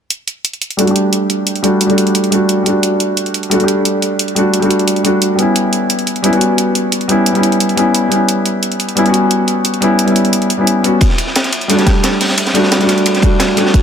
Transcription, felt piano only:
0.77 0.83 G3 medium
0.77 0.85 A3 medium
0.77 0.86 D4 medium
0.77 0.86 F#4 loud
0.84 1.60 G3 medium
0.84 1.61 A3 medium
0.89 1.62 D4 medium
0.89 1.63 G4 medium
1.62 1.85 G3 medium
1.62 1.87 A3 medium
1.62 1.88 D4 medium
1.62 1.88 F#4 loud
1.86 2.28 G3 medium
1.86 2.29 A3 medium
1.91 2.31 D4 medium
1.91 2.32 F#4 medium
2.30 2.61 G3 medium
2.30 2.64 A3 medium
2.30 2.64 D4 medium
2.30 2.65 F#4 medium
2.63 3.48 G3 medium
2.63 3.49 A3 medium
2.67 3.50 D4 medium
2.67 3.51 F#4 medium
3.50 3.55 G3 medium
3.50 3.58 A3 medium
3.50 3.58 D4 medium
3.50 3.59 F#4 loud
3.57 4.33 G3 medium
3.57 4.34 A3 medium
3.61 4.35 D4 medium
3.61 4.36 G4 medium
4.35 4.58 G3 medium
4.35 4.60 A3 medium
4.35 4.61 D4 medium
4.35 4.61 F#4 loud
4.59 5.01 G3 medium
4.59 5.02 A3 medium
4.64 5.03 D4 medium
4.64 5.04 F#4 medium
5.03 5.34 G3 medium
5.03 5.37 A3 medium
5.03 5.37 D4 medium
5.03 5.38 F#4 medium
5.36 6.20 G3 medium
5.36 6.21 B3 medium
5.40 6.23 C#4 medium
5.40 6.24 E4 medium
6.22 6.28 G3 medium
6.22 6.30 B3 medium
6.22 6.31 C#4 medium
6.22 6.32 E4 loud
6.30 7.06 G3 medium
6.30 7.07 B3 medium
6.34 7.08 C#4 medium
6.34 7.09 F#4 medium
7.08 7.30 G3 medium
7.08 7.33 B3 medium
7.08 7.33 C#4 medium
7.08 7.34 E4 loud
7.32 7.74 G3 medium
7.32 7.75 B3 medium
7.36 7.76 C#4 medium
7.36 7.77 E4 medium
7.76 8.07 G3 medium
7.76 8.09 B3 medium
7.76 8.10 C#4 medium
7.76 8.10 E4 medium
8.08 8.93 G3 medium
8.08 8.94 B3 medium
8.13 8.95 C#4 medium
8.13 8.97 E4 medium
8.95 9.01 G3 medium
8.95 9.03 B3 medium
8.95 9.04 C#4 medium
8.95 9.04 E4 loud
9.02 9.78 G3 medium
9.02 9.80 B3 medium
9.07 9.81 C#4 medium
9.07 9.82 F#4 medium
9.80 10.03 G3 medium
9.80 10.05 B3 medium
9.80 10.06 C#4 medium
9.80 10.07 E4 loud
10.05 10.47 G3 medium
10.05 10.48 B3 medium
10.09 10.49 C#4 medium
10.09 10.50 E4 medium
10.57 10.81 G3 medium
10.57 10.82 B3 medium
10.57 10.83 C#4 medium
10.57 10.83 E4 medium
10.83 10.97 G3 medium
10.83 10.97 B3 medium
10.83 10.98 C#4 medium
10.83 10.98 F#4 medium
11.68 11.74 G3 medium
11.68 11.76 A3 medium
11.68 11.77 D4 medium
11.68 11.77 F#4 loud
11.75 12.51 G3 medium
11.75 12.52 A3 medium
11.79 12.53 D4 medium
11.79 12.54 G4 medium
12.53 12.76 G3 medium
12.53 12.78 A3 medium
12.53 12.79 D4 medium
12.53 12.79 F#4 loud
12.77 13.19 G3 medium
12.77 13.20 A3 medium
12.82 13.21 D4 medium
12.82 13.23 F#4 medium
13.21 13.52 G3 medium
13.21 13.55 A3 medium
13.21 13.55 D4 medium
13.21 13.56 F#4 medium
13.54 13.82 G3 medium
13.54 13.82 A3 medium
13.58 13.82 D4 medium
13.58 13.82 F#4 medium

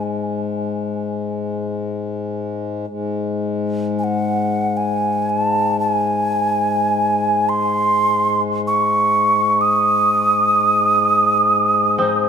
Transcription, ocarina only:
3.99 4.05 G#5 soft
4.04 4.79 F#5 medium
4.77 5.30 G#5 medium
5.30 5.41 G#5 medium
5.41 5.79 A5 medium
5.80 7.51 G#5 medium
7.49 8.41 C6 medium
8.67 9.63 C#6 medium
9.61 12.29 D#6 medium

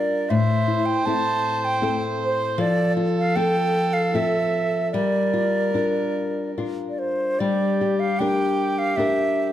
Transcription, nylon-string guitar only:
0.00 0.31 G3 medium
0.00 0.39 D4 soft
0.00 0.39 F4 soft
0.00 0.40 A#4 medium
0.30 2.59 A2 medium
0.68 1.05 E4 medium
1.06 1.81 C4 soft
1.06 1.81 E4 medium
1.06 1.83 A4 medium
1.82 3.35 C4 medium
1.82 2.67 E4 medium
1.82 3.37 A4 medium
2.58 4.97 F3 medium
2.97 3.36 F4 medium
3.36 4.13 C4 medium
3.36 4.14 F4 medium
3.36 4.14 A4 medium
4.14 5.00 C4 medium
4.14 5.33 F4 medium
4.14 5.01 A4 medium
4.94 7.40 G3 medium
5.33 5.73 F4 medium
5.74 6.57 D4 soft
5.74 6.56 F4 soft
5.74 6.58 A#4 soft
6.58 8.20 D4 soft
6.58 7.48 F4 soft
6.58 8.21 A#4 medium
7.40 9.52 G3 medium
7.81 8.19 G4 medium
8.20 8.96 D4 medium
8.20 8.97 G4 medium
8.20 8.98 A#4 medium
8.97 9.52 D4 medium
8.97 9.52 G4 soft
8.97 9.52 A#4 medium

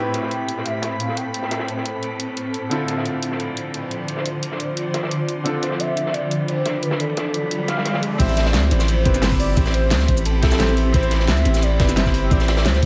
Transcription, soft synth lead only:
0.00 0.67 G5 loud
0.65 1.01 E5 loud
0.99 1.18 F5 loud
1.17 2.20 G5 loud
5.63 5.81 C5 loud
5.80 6.15 E5 loud
6.14 6.50 D5 loud
6.48 6.84 C5 loud
6.82 7.01 B4 loud
6.99 7.68 A4 medium
7.69 8.00 F5 loud
8.20 8.47 E5 loud
8.46 8.71 D5 medium
8.71 9.03 C5 loud
9.06 9.37 C5 loud
9.40 9.72 D5 medium
9.74 10.06 C5 loud
10.09 10.16 C5 medium
10.25 10.73 A4 medium
10.94 11.26 C5 loud
11.29 11.64 E5 loud
11.63 11.99 D5 loud
11.97 12.33 E5 loud
12.31 12.67 D5 loud
12.66 12.86 C5 loud

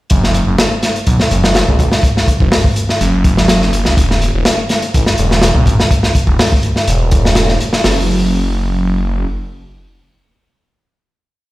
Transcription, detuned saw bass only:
0.11 0.43 F#1 loud
0.47 0.56 F#1 medium
1.07 1.17 B1 loud
1.31 1.63 F#1 medium
1.68 1.77 C#2 medium
1.79 1.89 B1 medium
2.40 2.49 F#1 medium
3.01 3.87 F#1 loud
3.86 3.95 C#2 medium
3.97 4.30 E1 loud
4.34 4.43 E1 medium
4.94 5.04 A1 loud
5.18 5.51 E1 medium
5.55 5.64 B1 medium
5.66 5.76 A1 loud
6.27 6.36 E1 medium
6.88 7.48 E1 loud
7.49 7.58 E1 medium
7.84 9.25 F#1 loud

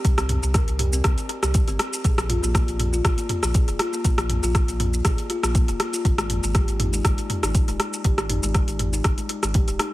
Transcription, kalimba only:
0.18 0.29 C4 medium
0.54 0.67 A#4 medium
0.79 0.92 G4 medium
0.93 0.99 C4 medium
1.43 1.49 G4 medium
1.68 1.79 C4 medium
2.05 2.18 G#4 medium
2.29 2.42 F4 medium
2.43 2.49 A#3 medium
2.54 2.67 A#3 medium
2.93 2.99 F4 medium
3.18 3.28 A#3 medium
3.54 3.67 G#4 medium
3.80 3.92 F4 medium
3.93 3.99 A#3 medium
4.05 4.17 A#3 medium
4.43 4.49 F4 medium
4.68 4.79 A#3 medium
5.05 5.18 G#4 medium
5.30 5.42 F4 medium
5.43 5.49 A#3 medium
5.54 5.67 A#3 medium
5.93 5.99 F4 medium
6.18 6.29 G#3 medium
6.55 6.67 G4 medium
6.79 6.92 D#4 medium
6.93 6.99 G#3 medium
7.05 7.17 G#3 medium
7.43 7.50 D#4 medium
7.68 7.79 G#3 medium
8.05 8.17 G4 medium
8.30 8.42 D#4 medium
8.43 8.49 G#3 medium
8.93 8.99 D#4 medium
9.18 9.29 G#3 medium
9.55 9.68 G4 medium
9.80 9.92 D#4 medium

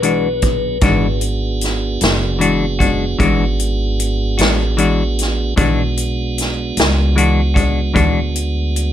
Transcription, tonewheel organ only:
0.00 0.78 F#3 medium
0.00 0.78 B3 medium
0.00 0.78 D4 medium
0.00 0.78 G#4 medium
0.84 5.54 B3 medium
0.84 5.54 D4 medium
0.84 5.55 F#4 medium
0.84 5.55 G#4 medium
5.57 8.93 G#3 medium
5.57 8.93 B3 medium
5.57 8.93 D4 medium
5.57 8.93 F#4 medium

